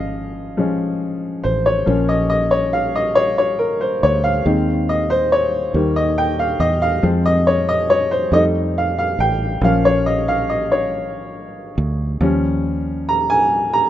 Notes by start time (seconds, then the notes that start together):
Already playing: G#1 F3 G#3 C#4 D#5 F5
0.57 F3 G#3 C#4
1.44 A1 C5
1.66 C#5
1.86 A#1 F3 A#3 C#4
2.09 D#5
2.30 D#5
2.51 C#5
2.73 F5
2.96 D#5
3.15 C#5
3.38 C#5
3.59 A#4
3.81 C5
4.03 D2 C#5
4.24 F5
4.45 D#2 D#3 G#3 C4
4.89 D#5
5.10 C5
5.32 C#5
5.74 D#2 D#3 G3 A#3
5.96 D#5
6.18 G5
6.39 F5
6.60 E2 D#5
6.82 F5
7.03 F2 F3 G#3 C4
7.26 D#5
7.47 C#5
7.69 D#5
7.90 C#5
8.11 C5
8.32 F2 G3 A3 D#4 D#5
8.78 F5
8.99 F5
9.19 A1 G5
9.61 A#1 F3 A#3 C#4 F5
9.85 C#5
10.06 D#5
10.28 F5
10.50 D#5
10.72 C#5
11.78 D2
12.21 D#2 F3 G3 C#4
13.09 A#5
13.30 G#5
13.73 A#5